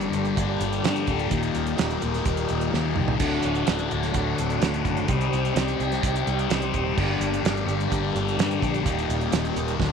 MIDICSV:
0, 0, Header, 1, 5, 480
1, 0, Start_track
1, 0, Tempo, 471698
1, 1333, Time_signature, 4, 2, 24, 8
1, 10095, End_track
2, 0, Start_track
2, 0, Title_t, "Tonewheel organ"
2, 0, Program_c, 0, 16
2, 0, Note_on_c, 0, 55, 78
2, 0, Note_on_c, 0, 58, 61
2, 0, Note_on_c, 0, 62, 67
2, 0, Note_on_c, 0, 67, 74
2, 1309, Note_off_c, 0, 62, 0
2, 1335, Note_on_c, 0, 63, 64
2, 3211, Note_off_c, 0, 58, 0
2, 3217, Note_off_c, 0, 55, 0
2, 3218, Note_off_c, 0, 67, 0
2, 3237, Note_off_c, 0, 63, 0
2, 3253, Note_on_c, 0, 62, 61
2, 3255, Note_on_c, 0, 66, 81
2, 3257, Note_on_c, 0, 57, 64
2, 3259, Note_on_c, 0, 54, 73
2, 5156, Note_off_c, 0, 62, 0
2, 5158, Note_off_c, 0, 57, 0
2, 5158, Note_off_c, 0, 66, 0
2, 5159, Note_off_c, 0, 54, 0
2, 5164, Note_on_c, 0, 60, 68
2, 5164, Note_on_c, 0, 63, 70
2, 5166, Note_on_c, 0, 55, 69
2, 5169, Note_on_c, 0, 67, 78
2, 7070, Note_off_c, 0, 60, 0
2, 7070, Note_off_c, 0, 63, 0
2, 7093, Note_on_c, 0, 58, 65
2, 7097, Note_on_c, 0, 62, 67
2, 8991, Note_off_c, 0, 58, 0
2, 8993, Note_off_c, 0, 62, 0
2, 9008, Note_on_c, 0, 63, 69
2, 9011, Note_on_c, 0, 58, 69
2, 9924, Note_off_c, 0, 55, 0
2, 9926, Note_off_c, 0, 67, 0
2, 9959, Note_off_c, 0, 63, 0
2, 9960, Note_off_c, 0, 58, 0
2, 9964, Note_on_c, 0, 54, 74
2, 9969, Note_on_c, 0, 57, 67
2, 9970, Note_on_c, 0, 62, 68
2, 9970, Note_on_c, 0, 66, 75
2, 10095, Note_off_c, 0, 54, 0
2, 10095, Note_off_c, 0, 57, 0
2, 10095, Note_off_c, 0, 62, 0
2, 10095, Note_off_c, 0, 66, 0
2, 10095, End_track
3, 0, Start_track
3, 0, Title_t, "Distorted electric guitar"
3, 0, Program_c, 1, 30
3, 0, Note_on_c, 1, 43, 103
3, 0, Note_on_c, 1, 50, 98
3, 0, Note_on_c, 1, 55, 115
3, 135, Note_off_c, 1, 55, 0
3, 139, Note_on_c, 1, 55, 72
3, 160, Note_off_c, 1, 50, 0
3, 172, Note_on_c, 1, 50, 62
3, 359, Note_off_c, 1, 43, 0
3, 371, Note_on_c, 1, 43, 81
3, 378, Note_off_c, 1, 50, 0
3, 390, Note_on_c, 1, 50, 72
3, 395, Note_off_c, 1, 55, 0
3, 408, Note_on_c, 1, 55, 86
3, 844, Note_off_c, 1, 43, 0
3, 856, Note_on_c, 1, 43, 66
3, 864, Note_off_c, 1, 50, 0
3, 876, Note_on_c, 1, 50, 76
3, 878, Note_off_c, 1, 55, 0
3, 890, Note_on_c, 1, 55, 92
3, 1080, Note_off_c, 1, 55, 0
3, 1092, Note_on_c, 1, 55, 77
3, 1116, Note_off_c, 1, 50, 0
3, 1128, Note_on_c, 1, 50, 58
3, 1318, Note_off_c, 1, 55, 0
3, 1320, Note_off_c, 1, 43, 0
3, 1327, Note_on_c, 1, 39, 86
3, 1336, Note_off_c, 1, 50, 0
3, 1342, Note_on_c, 1, 46, 89
3, 1360, Note_on_c, 1, 51, 100
3, 1791, Note_off_c, 1, 39, 0
3, 1803, Note_on_c, 1, 39, 104
3, 1810, Note_off_c, 1, 46, 0
3, 1822, Note_on_c, 1, 46, 103
3, 1827, Note_off_c, 1, 51, 0
3, 1840, Note_on_c, 1, 51, 109
3, 2033, Note_off_c, 1, 51, 0
3, 2045, Note_on_c, 1, 51, 69
3, 2070, Note_off_c, 1, 46, 0
3, 2082, Note_on_c, 1, 46, 58
3, 2276, Note_off_c, 1, 39, 0
3, 2288, Note_on_c, 1, 39, 68
3, 2300, Note_off_c, 1, 46, 0
3, 2313, Note_off_c, 1, 51, 0
3, 2313, Note_on_c, 1, 46, 77
3, 2325, Note_on_c, 1, 51, 83
3, 2750, Note_off_c, 1, 39, 0
3, 2762, Note_on_c, 1, 39, 79
3, 2773, Note_off_c, 1, 46, 0
3, 2785, Note_on_c, 1, 46, 80
3, 2790, Note_off_c, 1, 51, 0
3, 2802, Note_on_c, 1, 51, 85
3, 2992, Note_off_c, 1, 51, 0
3, 3004, Note_on_c, 1, 51, 73
3, 3035, Note_off_c, 1, 46, 0
3, 3047, Note_on_c, 1, 46, 55
3, 3235, Note_off_c, 1, 39, 0
3, 3235, Note_off_c, 1, 51, 0
3, 3242, Note_on_c, 1, 38, 86
3, 3257, Note_off_c, 1, 46, 0
3, 3263, Note_on_c, 1, 45, 88
3, 3280, Note_on_c, 1, 50, 105
3, 3700, Note_off_c, 1, 38, 0
3, 3713, Note_on_c, 1, 38, 91
3, 3725, Note_off_c, 1, 45, 0
3, 3737, Note_off_c, 1, 50, 0
3, 3738, Note_on_c, 1, 45, 98
3, 3750, Note_on_c, 1, 50, 96
3, 3951, Note_off_c, 1, 50, 0
3, 3963, Note_on_c, 1, 50, 78
3, 3983, Note_off_c, 1, 45, 0
3, 3995, Note_on_c, 1, 45, 60
3, 4182, Note_off_c, 1, 38, 0
3, 4194, Note_on_c, 1, 38, 79
3, 4203, Note_off_c, 1, 45, 0
3, 4216, Note_on_c, 1, 45, 70
3, 4218, Note_off_c, 1, 50, 0
3, 4230, Note_on_c, 1, 50, 84
3, 4663, Note_off_c, 1, 38, 0
3, 4675, Note_on_c, 1, 38, 69
3, 4685, Note_off_c, 1, 45, 0
3, 4697, Note_on_c, 1, 45, 82
3, 4701, Note_off_c, 1, 50, 0
3, 4713, Note_on_c, 1, 50, 86
3, 4901, Note_off_c, 1, 50, 0
3, 4913, Note_on_c, 1, 50, 70
3, 4939, Note_off_c, 1, 45, 0
3, 4952, Note_on_c, 1, 45, 60
3, 5150, Note_off_c, 1, 50, 0
3, 5151, Note_off_c, 1, 38, 0
3, 5160, Note_on_c, 1, 48, 85
3, 5170, Note_off_c, 1, 45, 0
3, 5181, Note_on_c, 1, 55, 95
3, 5196, Note_on_c, 1, 60, 100
3, 5628, Note_off_c, 1, 48, 0
3, 5641, Note_on_c, 1, 48, 106
3, 5656, Note_off_c, 1, 55, 0
3, 5660, Note_on_c, 1, 55, 104
3, 5664, Note_off_c, 1, 60, 0
3, 5676, Note_on_c, 1, 60, 102
3, 5869, Note_off_c, 1, 60, 0
3, 5881, Note_on_c, 1, 60, 79
3, 5913, Note_off_c, 1, 55, 0
3, 5917, Note_on_c, 1, 55, 64
3, 6116, Note_off_c, 1, 48, 0
3, 6128, Note_on_c, 1, 48, 78
3, 6142, Note_off_c, 1, 55, 0
3, 6146, Note_on_c, 1, 55, 70
3, 6151, Note_off_c, 1, 60, 0
3, 6163, Note_on_c, 1, 60, 79
3, 6586, Note_off_c, 1, 48, 0
3, 6599, Note_on_c, 1, 48, 79
3, 6611, Note_off_c, 1, 55, 0
3, 6615, Note_on_c, 1, 55, 82
3, 6622, Note_off_c, 1, 60, 0
3, 6635, Note_on_c, 1, 60, 94
3, 6834, Note_off_c, 1, 60, 0
3, 6846, Note_on_c, 1, 60, 69
3, 6881, Note_off_c, 1, 55, 0
3, 6885, Note_on_c, 1, 55, 60
3, 7072, Note_off_c, 1, 48, 0
3, 7076, Note_off_c, 1, 60, 0
3, 7086, Note_on_c, 1, 43, 95
3, 7103, Note_off_c, 1, 55, 0
3, 7107, Note_on_c, 1, 50, 98
3, 7121, Note_on_c, 1, 55, 105
3, 7547, Note_off_c, 1, 43, 0
3, 7559, Note_on_c, 1, 43, 102
3, 7572, Note_off_c, 1, 50, 0
3, 7584, Note_on_c, 1, 50, 103
3, 7585, Note_off_c, 1, 55, 0
3, 7598, Note_on_c, 1, 55, 107
3, 7784, Note_off_c, 1, 55, 0
3, 7796, Note_on_c, 1, 55, 75
3, 7821, Note_off_c, 1, 50, 0
3, 7833, Note_on_c, 1, 50, 64
3, 8019, Note_off_c, 1, 43, 0
3, 8031, Note_on_c, 1, 43, 69
3, 8043, Note_off_c, 1, 50, 0
3, 8055, Note_on_c, 1, 50, 81
3, 8056, Note_off_c, 1, 55, 0
3, 8069, Note_on_c, 1, 55, 89
3, 8502, Note_off_c, 1, 43, 0
3, 8514, Note_on_c, 1, 43, 74
3, 8522, Note_off_c, 1, 50, 0
3, 8534, Note_on_c, 1, 50, 82
3, 8538, Note_off_c, 1, 55, 0
3, 8550, Note_on_c, 1, 55, 85
3, 8749, Note_off_c, 1, 55, 0
3, 8761, Note_on_c, 1, 55, 71
3, 8783, Note_off_c, 1, 50, 0
3, 8795, Note_on_c, 1, 50, 60
3, 8988, Note_off_c, 1, 43, 0
3, 8992, Note_off_c, 1, 55, 0
3, 8998, Note_on_c, 1, 39, 104
3, 9009, Note_off_c, 1, 50, 0
3, 9017, Note_on_c, 1, 46, 99
3, 9033, Note_on_c, 1, 51, 98
3, 9468, Note_off_c, 1, 39, 0
3, 9480, Note_on_c, 1, 39, 91
3, 9487, Note_off_c, 1, 46, 0
3, 9499, Note_on_c, 1, 46, 111
3, 9507, Note_off_c, 1, 51, 0
3, 9519, Note_on_c, 1, 51, 94
3, 9712, Note_off_c, 1, 51, 0
3, 9724, Note_on_c, 1, 51, 81
3, 9749, Note_off_c, 1, 46, 0
3, 9761, Note_on_c, 1, 46, 55
3, 9951, Note_off_c, 1, 39, 0
3, 9953, Note_off_c, 1, 51, 0
3, 9971, Note_off_c, 1, 46, 0
3, 9971, Note_on_c, 1, 38, 84
3, 9992, Note_on_c, 1, 45, 94
3, 10009, Note_on_c, 1, 50, 99
3, 10095, Note_off_c, 1, 38, 0
3, 10095, Note_off_c, 1, 45, 0
3, 10095, Note_off_c, 1, 50, 0
3, 10095, End_track
4, 0, Start_track
4, 0, Title_t, "Fingered electric bass"
4, 0, Program_c, 2, 33
4, 134, Note_on_c, 2, 31, 84
4, 327, Note_off_c, 2, 31, 0
4, 384, Note_on_c, 2, 31, 90
4, 573, Note_off_c, 2, 31, 0
4, 615, Note_on_c, 2, 31, 98
4, 808, Note_off_c, 2, 31, 0
4, 856, Note_on_c, 2, 43, 86
4, 1049, Note_off_c, 2, 43, 0
4, 1094, Note_on_c, 2, 26, 86
4, 1288, Note_off_c, 2, 26, 0
4, 1340, Note_on_c, 2, 27, 89
4, 1531, Note_off_c, 2, 27, 0
4, 1581, Note_on_c, 2, 27, 79
4, 1772, Note_off_c, 2, 27, 0
4, 1823, Note_on_c, 2, 27, 87
4, 2014, Note_off_c, 2, 27, 0
4, 2066, Note_on_c, 2, 27, 87
4, 2255, Note_off_c, 2, 27, 0
4, 2296, Note_on_c, 2, 27, 95
4, 2490, Note_off_c, 2, 27, 0
4, 2549, Note_on_c, 2, 27, 93
4, 2737, Note_off_c, 2, 27, 0
4, 2787, Note_on_c, 2, 39, 86
4, 2977, Note_off_c, 2, 39, 0
4, 3032, Note_on_c, 2, 36, 83
4, 3257, Note_on_c, 2, 26, 89
4, 3273, Note_off_c, 2, 36, 0
4, 3451, Note_off_c, 2, 26, 0
4, 3504, Note_on_c, 2, 26, 89
4, 3695, Note_off_c, 2, 26, 0
4, 3751, Note_on_c, 2, 26, 93
4, 3939, Note_off_c, 2, 26, 0
4, 3990, Note_on_c, 2, 26, 83
4, 4179, Note_off_c, 2, 26, 0
4, 4220, Note_on_c, 2, 26, 91
4, 4413, Note_off_c, 2, 26, 0
4, 4469, Note_on_c, 2, 26, 93
4, 4658, Note_off_c, 2, 26, 0
4, 4704, Note_on_c, 2, 38, 87
4, 4895, Note_off_c, 2, 38, 0
4, 4936, Note_on_c, 2, 30, 93
4, 5130, Note_off_c, 2, 30, 0
4, 5175, Note_on_c, 2, 36, 92
4, 5370, Note_off_c, 2, 36, 0
4, 5421, Note_on_c, 2, 36, 92
4, 5614, Note_off_c, 2, 36, 0
4, 5650, Note_on_c, 2, 36, 89
4, 5847, Note_off_c, 2, 36, 0
4, 5898, Note_on_c, 2, 36, 83
4, 6092, Note_off_c, 2, 36, 0
4, 6139, Note_on_c, 2, 36, 92
4, 6332, Note_off_c, 2, 36, 0
4, 6381, Note_on_c, 2, 36, 93
4, 6573, Note_off_c, 2, 36, 0
4, 6616, Note_on_c, 2, 36, 88
4, 6810, Note_off_c, 2, 36, 0
4, 6860, Note_on_c, 2, 27, 94
4, 7052, Note_off_c, 2, 27, 0
4, 7100, Note_on_c, 2, 31, 99
4, 7292, Note_off_c, 2, 31, 0
4, 7326, Note_on_c, 2, 31, 89
4, 7524, Note_off_c, 2, 31, 0
4, 7569, Note_on_c, 2, 31, 89
4, 7765, Note_off_c, 2, 31, 0
4, 7805, Note_on_c, 2, 31, 94
4, 8003, Note_off_c, 2, 31, 0
4, 8062, Note_on_c, 2, 31, 98
4, 8252, Note_off_c, 2, 31, 0
4, 8293, Note_on_c, 2, 31, 92
4, 8487, Note_off_c, 2, 31, 0
4, 8523, Note_on_c, 2, 43, 92
4, 8721, Note_off_c, 2, 43, 0
4, 8774, Note_on_c, 2, 34, 92
4, 8967, Note_off_c, 2, 34, 0
4, 9011, Note_on_c, 2, 27, 92
4, 9205, Note_off_c, 2, 27, 0
4, 9250, Note_on_c, 2, 27, 88
4, 9445, Note_off_c, 2, 27, 0
4, 9489, Note_on_c, 2, 27, 88
4, 9684, Note_off_c, 2, 27, 0
4, 9725, Note_on_c, 2, 27, 85
4, 9922, Note_off_c, 2, 27, 0
4, 9970, Note_on_c, 2, 26, 90
4, 10095, Note_off_c, 2, 26, 0
4, 10095, End_track
5, 0, Start_track
5, 0, Title_t, "Drums"
5, 11, Note_on_c, 9, 42, 50
5, 113, Note_off_c, 9, 42, 0
5, 133, Note_on_c, 9, 42, 65
5, 234, Note_off_c, 9, 42, 0
5, 253, Note_on_c, 9, 42, 41
5, 355, Note_off_c, 9, 42, 0
5, 378, Note_on_c, 9, 36, 108
5, 379, Note_on_c, 9, 42, 95
5, 480, Note_off_c, 9, 36, 0
5, 481, Note_off_c, 9, 42, 0
5, 616, Note_on_c, 9, 42, 68
5, 718, Note_off_c, 9, 42, 0
5, 739, Note_on_c, 9, 42, 44
5, 841, Note_off_c, 9, 42, 0
5, 859, Note_on_c, 9, 42, 103
5, 870, Note_on_c, 9, 38, 118
5, 960, Note_off_c, 9, 42, 0
5, 972, Note_off_c, 9, 38, 0
5, 975, Note_on_c, 9, 42, 47
5, 1077, Note_off_c, 9, 42, 0
5, 1091, Note_on_c, 9, 42, 74
5, 1096, Note_on_c, 9, 36, 77
5, 1193, Note_off_c, 9, 42, 0
5, 1197, Note_off_c, 9, 36, 0
5, 1215, Note_on_c, 9, 42, 41
5, 1316, Note_off_c, 9, 42, 0
5, 1333, Note_on_c, 9, 42, 97
5, 1336, Note_on_c, 9, 36, 113
5, 1434, Note_off_c, 9, 42, 0
5, 1438, Note_off_c, 9, 36, 0
5, 1451, Note_on_c, 9, 42, 49
5, 1553, Note_off_c, 9, 42, 0
5, 1572, Note_on_c, 9, 42, 75
5, 1674, Note_off_c, 9, 42, 0
5, 1694, Note_on_c, 9, 42, 48
5, 1796, Note_off_c, 9, 42, 0
5, 1813, Note_on_c, 9, 42, 107
5, 1824, Note_on_c, 9, 38, 115
5, 1915, Note_off_c, 9, 42, 0
5, 1926, Note_off_c, 9, 38, 0
5, 1938, Note_on_c, 9, 42, 49
5, 2040, Note_off_c, 9, 42, 0
5, 2052, Note_on_c, 9, 42, 75
5, 2154, Note_off_c, 9, 42, 0
5, 2182, Note_on_c, 9, 42, 47
5, 2193, Note_on_c, 9, 38, 30
5, 2284, Note_off_c, 9, 42, 0
5, 2294, Note_on_c, 9, 42, 104
5, 2295, Note_off_c, 9, 38, 0
5, 2297, Note_on_c, 9, 36, 110
5, 2396, Note_off_c, 9, 42, 0
5, 2399, Note_off_c, 9, 36, 0
5, 2412, Note_on_c, 9, 42, 58
5, 2514, Note_off_c, 9, 42, 0
5, 2529, Note_on_c, 9, 42, 80
5, 2630, Note_off_c, 9, 42, 0
5, 2656, Note_on_c, 9, 42, 47
5, 2758, Note_off_c, 9, 42, 0
5, 2788, Note_on_c, 9, 38, 66
5, 2890, Note_off_c, 9, 38, 0
5, 3008, Note_on_c, 9, 45, 90
5, 3110, Note_off_c, 9, 45, 0
5, 3134, Note_on_c, 9, 43, 85
5, 3236, Note_off_c, 9, 43, 0
5, 3254, Note_on_c, 9, 42, 103
5, 3254, Note_on_c, 9, 49, 101
5, 3257, Note_on_c, 9, 36, 116
5, 3355, Note_off_c, 9, 42, 0
5, 3355, Note_off_c, 9, 49, 0
5, 3359, Note_off_c, 9, 36, 0
5, 3485, Note_on_c, 9, 42, 85
5, 3586, Note_off_c, 9, 42, 0
5, 3613, Note_on_c, 9, 42, 44
5, 3715, Note_off_c, 9, 42, 0
5, 3731, Note_on_c, 9, 42, 108
5, 3742, Note_on_c, 9, 38, 120
5, 3833, Note_off_c, 9, 42, 0
5, 3844, Note_off_c, 9, 38, 0
5, 3853, Note_on_c, 9, 42, 50
5, 3954, Note_off_c, 9, 42, 0
5, 3980, Note_on_c, 9, 42, 71
5, 4081, Note_off_c, 9, 42, 0
5, 4101, Note_on_c, 9, 42, 44
5, 4112, Note_on_c, 9, 38, 35
5, 4203, Note_off_c, 9, 42, 0
5, 4213, Note_on_c, 9, 42, 93
5, 4214, Note_off_c, 9, 38, 0
5, 4218, Note_on_c, 9, 36, 107
5, 4315, Note_off_c, 9, 42, 0
5, 4320, Note_off_c, 9, 36, 0
5, 4460, Note_on_c, 9, 42, 69
5, 4562, Note_off_c, 9, 42, 0
5, 4580, Note_on_c, 9, 42, 50
5, 4681, Note_off_c, 9, 42, 0
5, 4697, Note_on_c, 9, 42, 89
5, 4708, Note_on_c, 9, 38, 105
5, 4798, Note_off_c, 9, 42, 0
5, 4810, Note_off_c, 9, 38, 0
5, 4821, Note_on_c, 9, 42, 45
5, 4923, Note_off_c, 9, 42, 0
5, 4936, Note_on_c, 9, 36, 84
5, 4937, Note_on_c, 9, 42, 73
5, 5037, Note_off_c, 9, 36, 0
5, 5039, Note_off_c, 9, 42, 0
5, 5056, Note_on_c, 9, 42, 42
5, 5158, Note_off_c, 9, 42, 0
5, 5172, Note_on_c, 9, 42, 92
5, 5175, Note_on_c, 9, 36, 123
5, 5273, Note_off_c, 9, 42, 0
5, 5277, Note_off_c, 9, 36, 0
5, 5301, Note_on_c, 9, 42, 50
5, 5402, Note_off_c, 9, 42, 0
5, 5425, Note_on_c, 9, 42, 78
5, 5527, Note_off_c, 9, 42, 0
5, 5546, Note_on_c, 9, 42, 49
5, 5647, Note_off_c, 9, 42, 0
5, 5658, Note_on_c, 9, 42, 109
5, 5669, Note_on_c, 9, 38, 107
5, 5760, Note_off_c, 9, 42, 0
5, 5771, Note_off_c, 9, 38, 0
5, 5780, Note_on_c, 9, 42, 48
5, 5882, Note_off_c, 9, 42, 0
5, 5902, Note_on_c, 9, 42, 72
5, 6004, Note_off_c, 9, 42, 0
5, 6021, Note_on_c, 9, 42, 50
5, 6032, Note_on_c, 9, 38, 35
5, 6123, Note_off_c, 9, 42, 0
5, 6134, Note_off_c, 9, 38, 0
5, 6139, Note_on_c, 9, 36, 120
5, 6141, Note_on_c, 9, 42, 111
5, 6241, Note_off_c, 9, 36, 0
5, 6242, Note_off_c, 9, 42, 0
5, 6264, Note_on_c, 9, 42, 54
5, 6365, Note_off_c, 9, 42, 0
5, 6381, Note_on_c, 9, 42, 76
5, 6483, Note_off_c, 9, 42, 0
5, 6501, Note_on_c, 9, 42, 50
5, 6603, Note_off_c, 9, 42, 0
5, 6617, Note_on_c, 9, 42, 101
5, 6628, Note_on_c, 9, 38, 112
5, 6719, Note_off_c, 9, 42, 0
5, 6730, Note_off_c, 9, 38, 0
5, 6735, Note_on_c, 9, 42, 51
5, 6837, Note_off_c, 9, 42, 0
5, 6856, Note_on_c, 9, 42, 82
5, 6858, Note_on_c, 9, 36, 74
5, 6958, Note_off_c, 9, 42, 0
5, 6960, Note_off_c, 9, 36, 0
5, 7100, Note_on_c, 9, 36, 114
5, 7102, Note_on_c, 9, 49, 100
5, 7202, Note_off_c, 9, 36, 0
5, 7203, Note_off_c, 9, 49, 0
5, 7338, Note_on_c, 9, 42, 85
5, 7440, Note_off_c, 9, 42, 0
5, 7466, Note_on_c, 9, 42, 52
5, 7568, Note_off_c, 9, 42, 0
5, 7582, Note_on_c, 9, 42, 112
5, 7593, Note_on_c, 9, 38, 121
5, 7684, Note_off_c, 9, 42, 0
5, 7695, Note_off_c, 9, 38, 0
5, 7705, Note_on_c, 9, 42, 50
5, 7807, Note_off_c, 9, 42, 0
5, 7820, Note_on_c, 9, 42, 78
5, 7922, Note_off_c, 9, 42, 0
5, 7942, Note_on_c, 9, 42, 50
5, 8043, Note_off_c, 9, 42, 0
5, 8058, Note_on_c, 9, 36, 110
5, 8060, Note_on_c, 9, 42, 98
5, 8160, Note_off_c, 9, 36, 0
5, 8162, Note_off_c, 9, 42, 0
5, 8301, Note_on_c, 9, 42, 76
5, 8403, Note_off_c, 9, 42, 0
5, 8429, Note_on_c, 9, 42, 47
5, 8531, Note_off_c, 9, 42, 0
5, 8539, Note_on_c, 9, 42, 95
5, 8550, Note_on_c, 9, 38, 110
5, 8640, Note_off_c, 9, 42, 0
5, 8652, Note_off_c, 9, 38, 0
5, 8660, Note_on_c, 9, 42, 45
5, 8762, Note_off_c, 9, 42, 0
5, 8777, Note_on_c, 9, 36, 80
5, 8784, Note_on_c, 9, 42, 70
5, 8878, Note_off_c, 9, 36, 0
5, 8885, Note_off_c, 9, 42, 0
5, 8898, Note_on_c, 9, 42, 44
5, 9000, Note_off_c, 9, 42, 0
5, 9015, Note_on_c, 9, 36, 115
5, 9017, Note_on_c, 9, 42, 101
5, 9117, Note_off_c, 9, 36, 0
5, 9118, Note_off_c, 9, 42, 0
5, 9145, Note_on_c, 9, 42, 45
5, 9247, Note_off_c, 9, 42, 0
5, 9260, Note_on_c, 9, 42, 78
5, 9362, Note_off_c, 9, 42, 0
5, 9374, Note_on_c, 9, 42, 48
5, 9475, Note_off_c, 9, 42, 0
5, 9488, Note_on_c, 9, 42, 105
5, 9499, Note_on_c, 9, 38, 112
5, 9589, Note_off_c, 9, 42, 0
5, 9601, Note_off_c, 9, 38, 0
5, 9616, Note_on_c, 9, 42, 46
5, 9717, Note_off_c, 9, 42, 0
5, 9733, Note_on_c, 9, 42, 81
5, 9834, Note_off_c, 9, 42, 0
5, 9851, Note_on_c, 9, 42, 52
5, 9952, Note_off_c, 9, 42, 0
5, 9969, Note_on_c, 9, 36, 112
5, 9976, Note_on_c, 9, 38, 70
5, 10071, Note_off_c, 9, 36, 0
5, 10078, Note_off_c, 9, 38, 0
5, 10095, End_track
0, 0, End_of_file